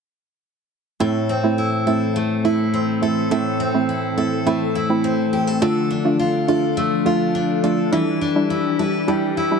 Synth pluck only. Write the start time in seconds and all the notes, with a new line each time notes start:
1.00 A3 C4 E4
1.44 A3 C4 E4
1.87 A3 C4 E4
2.44 A3 C4 E4
3.02 A3 C4 E4
3.31 A3 C4 E4
3.74 A3 C4 E4
4.17 A3 C4 E4
4.46 A3 C4 E4
4.89 A3 C4 E4
5.62 A3 D4 F4
6.05 A3 D4 F4
6.48 A3 D4 F4
7.05 A3 D4 F4
7.63 A3 D4 F4
7.92 G3 D4 E4
8.35 G3 D4 E4
8.79 G3 D4 E4
9.07 G3 D4 E4
9.51 G3 D4 E4